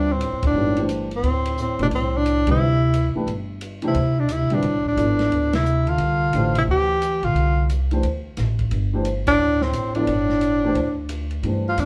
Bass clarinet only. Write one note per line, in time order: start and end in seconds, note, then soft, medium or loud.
0.12 0.44 A2 medium
0.46 0.88 A2 medium
1.13 1.55 A2 medium
1.58 1.78 A2 medium
1.81 1.86 B2 medium
1.95 2.14 A2 medium
2.14 2.47 A2 medium
2.47 3.11 C3 medium
3.86 4.22 C3 medium
4.21 4.34 B2 medium
4.32 4.56 C3 medium
4.55 4.87 A2 medium
4.88 5.50 A2 medium
5.54 5.88 C3 medium
5.87 6.55 D3 medium
6.56 6.61 C3 medium
6.67 7.24 E3 medium
7.23 7.70 D3 medium
9.26 9.61 A2 medium
9.61 9.94 A2 medium
9.95 11.05 A2 medium